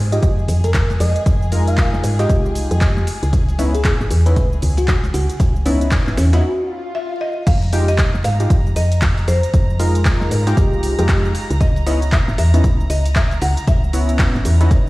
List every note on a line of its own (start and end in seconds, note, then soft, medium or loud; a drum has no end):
0.00 0.20 G#2 medium
0.00 6.43 G#4 medium
0.12 0.29 G#3 medium
0.12 0.29 D#4 medium
0.12 0.29 F4 medium
0.12 0.29 G4 medium
0.12 0.19 D#5 medium
0.12 closed hi-hat medium
0.12 shaker soft
0.23 0.45 F2 medium
0.23 0.33 D#5 medium
0.23 kick loud
0.23 closed hi-hat soft
0.23 closed hi-hat medium
0.23 high conga medium
0.23 shaker soft
0.39 shaker soft
0.48 0.98 F2 medium
0.48 closed hi-hat medium
0.48 open hi-hat loud
0.48 low conga medium
0.48 shaker medium
0.64 0.84 A#4 medium
0.64 closed hi-hat medium
0.64 closed hi-hat soft
0.64 muted conga medium
0.64 shaker soft
0.74 kick loud
0.74 snare loud
0.74 clap loud
0.74 closed hi-hat soft
0.74 closed hi-hat medium
0.74 shaker soft
0.90 closed hi-hat soft
0.90 high conga medium
0.90 shaker soft
1.00 1.13 F2 loud
1.00 1.22 D#5 medium
1.00 closed hi-hat medium
1.00 open hi-hat medium
1.00 shaker medium
1.16 closed hi-hat medium
1.16 shaker soft
1.26 1.90 F2 loud
1.26 kick loud
1.26 closed hi-hat medium
1.26 shaker soft
1.42 shaker soft
1.52 2.16 G#3 medium
1.52 2.16 D#4 medium
1.52 2.16 F4 medium
1.52 2.16 A#4 medium
1.52 closed hi-hat medium
1.52 open hi-hat loud
1.52 high conga medium
1.52 shaker medium
1.68 1.88 F5 medium
1.68 closed hi-hat medium
1.68 shaker soft
1.78 kick loud
1.78 snare loud
1.78 clap loud
1.78 closed hi-hat medium
1.78 open hi-hat medium
1.78 shaker soft
1.93 2.02 F1 loud
1.93 snare soft
1.93 shaker soft
2.04 2.26 G#2 medium
2.04 closed hi-hat medium
2.04 open hi-hat medium
2.04 shaker medium
2.19 3.06 G#3 medium
2.19 3.06 D#4 medium
2.19 3.06 F4 medium
2.19 3.06 G4 medium
2.19 2.91 D#5 medium
2.19 snare medium
2.19 closed hi-hat medium
2.19 shaker soft
2.29 2.67 C2 medium
2.29 kick loud
2.29 closed hi-hat soft
2.29 closed hi-hat medium
2.29 muted conga medium
2.29 high conga medium
2.29 shaker soft
2.46 shaker soft
2.55 closed hi-hat medium
2.55 open hi-hat loud
2.55 shaker medium
2.71 3.05 F2 loud
2.71 closed hi-hat medium
2.71 shaker soft
2.81 kick loud
2.81 snare loud
2.81 clap loud
2.81 closed hi-hat medium
2.81 closed hi-hat soft
2.81 shaker soft
2.97 muted conga medium
2.97 high conga medium
2.97 shaker soft
3.07 closed hi-hat medium
3.07 open hi-hat medium
3.07 shaker medium
3.23 3.31 C#2 loud
3.23 closed hi-hat medium
3.23 shaker soft
3.33 3.96 C#2 loud
3.33 kick loud
3.33 closed hi-hat medium
3.33 shaker soft
3.49 closed hi-hat soft
3.49 shaker soft
3.58 3.72 B3 medium
3.58 3.72 C#4 medium
3.58 3.72 D#4 medium
3.58 3.73 E4 loud
3.58 closed hi-hat medium
3.58 open hi-hat loud
3.58 high conga medium
3.58 shaker medium
3.75 3.81 G#4 medium
3.75 closed hi-hat medium
3.75 shaker soft
3.85 3.95 G#4 medium
3.85 kick loud
3.85 snare loud
3.85 clap loud
3.85 closed hi-hat medium
3.85 shaker soft
4.00 4.09 G#1 loud
4.00 shaker soft
4.11 4.33 E2 medium
4.11 closed hi-hat medium
4.11 open hi-hat medium
4.11 shaker medium
4.26 4.43 B3 medium
4.26 4.43 C#4 medium
4.26 4.43 D#4 medium
4.26 4.43 E4 medium
4.26 4.33 B4 medium
4.26 closed hi-hat medium
4.26 shaker soft
4.36 4.59 C#2 medium
4.36 4.46 B4 medium
4.36 kick loud
4.36 closed hi-hat soft
4.36 closed hi-hat medium
4.36 high conga medium
4.36 shaker soft
4.52 shaker soft
4.62 5.12 C#2 medium
4.62 closed hi-hat medium
4.62 open hi-hat loud
4.62 low conga medium
4.62 shaker medium
4.77 4.98 F#4 medium
4.77 closed hi-hat medium
4.77 closed hi-hat soft
4.77 muted conga medium
4.77 shaker soft
4.88 kick loud
4.88 snare loud
4.88 clap loud
4.88 closed hi-hat medium
4.88 shaker soft
5.03 closed hi-hat soft
5.03 high conga medium
5.03 shaker soft
5.14 5.27 C#2 loud
5.14 5.36 F#4 medium
5.14 closed hi-hat medium
5.14 open hi-hat medium
5.14 shaker medium
5.30 closed hi-hat medium
5.30 shaker soft
5.40 6.03 C#2 medium
5.40 kick loud
5.40 closed hi-hat medium
5.40 shaker soft
5.56 shaker soft
5.66 6.29 B3 medium
5.66 6.29 C#4 medium
5.66 5.88 C#4 medium
5.66 6.29 D#4 medium
5.66 6.29 E4 medium
5.66 closed hi-hat medium
5.66 open hi-hat loud
5.66 muted conga soft
5.66 high conga medium
5.66 shaker medium
5.81 closed hi-hat medium
5.81 shaker soft
5.91 kick loud
5.91 snare loud
5.91 clap loud
5.91 closed hi-hat medium
5.91 open hi-hat medium
5.91 shaker soft
6.07 6.16 G#1 loud
6.07 snare soft
6.07 clap soft
6.07 shaker soft
6.17 6.40 E2 medium
6.17 6.30 C#4 medium
6.17 snare loud
6.17 closed hi-hat medium
6.17 open hi-hat medium
6.17 shaker medium
6.33 6.43 B3 medium
6.33 6.43 C#4 medium
6.33 6.43 D#4 medium
6.33 6.43 E4 medium
6.33 6.69 F#4 medium
6.33 snare loud
6.33 closed hi-hat medium
6.33 shaker soft
6.43 swell medium
6.95 7.19 E5 loud
7.21 7.33 D#5 loud
7.47 8.10 F2 loud
7.47 7.90 F5 loud
7.47 14.89 A#5 medium
7.47 kick loud
7.47 closed hi-hat medium
7.47 crash loud
7.47 shaker soft
7.62 closed hi-hat soft
7.62 shaker soft
7.73 7.86 G#3 medium
7.73 7.86 D#4 medium
7.73 7.86 F4 medium
7.73 7.86 G4 loud
7.73 closed hi-hat medium
7.73 open hi-hat loud
7.73 shaker medium
7.88 8.25 D#5 loud
7.88 closed hi-hat medium
7.88 shaker soft
7.98 kick loud
7.98 snare loud
7.98 clap loud
7.98 closed hi-hat medium
7.98 shaker soft
8.14 8.23 F1 loud
8.14 shaker soft
8.24 8.47 G#2 medium
8.24 8.78 F5 loud
8.24 closed hi-hat medium
8.24 open hi-hat medium
8.24 shaker medium
8.40 8.56 G#3 medium
8.40 8.56 D#4 medium
8.40 8.56 F4 medium
8.40 8.56 G4 medium
8.40 closed hi-hat medium
8.40 shaker soft
8.50 8.73 F2 medium
8.50 kick loud
8.50 closed hi-hat medium
8.50 shaker soft
8.66 shaker soft
8.76 9.25 F2 medium
8.76 9.24 D#5 loud
8.76 closed hi-hat medium
8.76 open hi-hat loud
8.76 shaker medium
8.92 closed hi-hat medium
8.92 closed hi-hat soft
8.92 shaker soft
9.02 kick loud
9.02 snare loud
9.02 clap loud
9.02 closed hi-hat medium
9.02 shaker soft
9.18 closed hi-hat soft
9.18 shaker soft
9.28 9.41 F2 loud
9.28 10.27 C5 medium
9.28 closed hi-hat medium
9.28 open hi-hat medium
9.28 shaker medium
9.43 closed hi-hat medium
9.43 shaker soft
9.54 10.17 F2 loud
9.54 kick loud
9.54 closed hi-hat medium
9.54 shaker soft
9.70 shaker soft
9.79 10.43 G#3 medium
9.79 10.43 D#4 medium
9.79 10.43 F4 medium
9.79 10.43 A#4 loud
9.79 closed hi-hat medium
9.79 open hi-hat loud
9.79 shaker medium
9.95 closed hi-hat medium
9.95 shaker soft
10.05 kick loud
10.05 snare loud
10.05 clap loud
10.05 closed hi-hat medium
10.05 open hi-hat medium
10.05 shaker soft
10.21 10.30 F1 loud
10.21 snare soft
10.21 shaker soft
10.31 10.54 G#2 medium
10.31 closed hi-hat medium
10.31 open hi-hat loud
10.31 shaker medium
10.47 10.95 G#3 medium
10.47 10.95 D#4 medium
10.47 10.96 F4 medium
10.47 10.96 G4 medium
10.47 snare medium
10.47 closed hi-hat medium
10.47 shaker soft
10.57 10.95 C2 medium
10.57 kick loud
10.57 closed hi-hat medium
10.57 shaker soft
10.73 shaker soft
10.83 closed hi-hat medium
10.83 open hi-hat loud
10.83 shaker medium
10.99 11.32 F2 loud
10.99 11.33 G#3 medium
10.99 11.33 D#4 medium
10.99 11.34 F4 medium
10.99 11.34 G4 medium
10.99 closed hi-hat medium
10.99 shaker soft
11.09 kick loud
11.09 snare loud
11.09 clap loud
11.09 closed hi-hat medium
11.09 shaker soft
11.25 shaker soft
11.35 closed hi-hat medium
11.35 open hi-hat medium
11.35 shaker medium
11.50 11.59 C#2 loud
11.50 closed hi-hat medium
11.50 shaker soft
11.61 12.24 C#2 loud
11.61 11.85 D#5 medium
11.61 kick loud
11.61 closed hi-hat medium
11.61 shaker soft
11.76 closed hi-hat soft
11.76 shaker soft
11.86 12.00 B3 medium
11.86 12.00 C#4 medium
11.86 12.00 D#4 medium
11.86 12.00 E4 loud
11.86 12.13 D#5 medium
11.86 closed hi-hat medium
11.86 open hi-hat loud
11.86 shaker medium
12.02 closed hi-hat medium
12.02 shaker soft
12.12 12.37 E5 medium
12.12 kick loud
12.12 snare loud
12.12 clap loud
12.12 closed hi-hat medium
12.12 closed hi-hat soft
12.12 shaker soft
12.28 12.37 G#1 loud
12.28 shaker soft
12.38 12.61 E2 medium
12.38 12.91 E5 loud
12.38 closed hi-hat medium
12.38 open hi-hat loud
12.38 shaker medium
12.54 12.70 B3 medium
12.54 12.70 C#4 medium
12.54 12.70 D#4 medium
12.54 12.70 E4 medium
12.54 closed hi-hat medium
12.54 shaker soft
12.64 12.87 C#2 medium
12.64 kick loud
12.64 closed hi-hat medium
12.64 closed hi-hat soft
12.64 shaker soft
12.80 shaker soft
12.90 13.39 C#2 medium
12.90 13.17 D#5 medium
12.90 closed hi-hat medium
12.90 open hi-hat loud
12.90 shaker medium
13.06 closed hi-hat soft
13.06 closed hi-hat medium
13.06 shaker soft
13.16 13.40 E5 loud
13.16 kick loud
13.16 snare loud
13.16 clap loud
13.16 closed hi-hat medium
13.16 shaker soft
13.31 closed hi-hat soft
13.31 shaker soft
13.42 13.55 C#2 loud
13.42 13.68 F#5 loud
13.42 closed hi-hat medium
13.42 open hi-hat loud
13.42 shaker medium
13.57 closed hi-hat medium
13.57 shaker soft
13.67 14.31 C#2 loud
13.67 14.67 E5 loud
13.67 kick loud
13.67 closed hi-hat medium
13.67 closed hi-hat soft
13.67 shaker soft
13.84 shaker soft
13.93 14.57 B3 medium
13.93 14.57 C#4 medium
13.93 14.57 E4 loud
13.93 closed hi-hat medium
13.93 open hi-hat loud
13.93 shaker medium
14.09 closed hi-hat medium
14.09 shaker soft
14.19 kick loud
14.19 snare loud
14.19 clap loud
14.19 closed hi-hat soft
14.19 open hi-hat medium
14.19 shaker soft
14.35 14.44 G#1 loud
14.35 snare soft
14.35 shaker soft
14.45 14.68 E2 medium
14.45 closed hi-hat medium
14.45 open hi-hat loud
14.45 shaker medium
14.61 14.89 B3 medium
14.61 14.89 C#4 medium
14.61 14.89 D#4 medium
14.61 14.89 E4 medium
14.61 snare medium
14.61 closed hi-hat medium
14.61 shaker soft
14.71 14.89 G#1 medium
14.71 kick loud
14.71 closed hi-hat soft
14.71 closed hi-hat medium
14.71 shaker soft